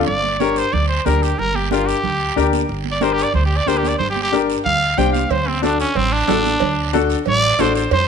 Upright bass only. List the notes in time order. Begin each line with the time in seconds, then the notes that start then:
0.08 G1
0.73 D2
1.06 D2
1.39 G1
2.05 D2
2.37 D2
2.69 G1
3.34 D2
3.67 D2
4.00 G1
4.66 D2
4.98 C2
5.30 D2
5.95 A1
6.28 A1
6.61 D2
7.26 A1
7.59 A1
7.91 F2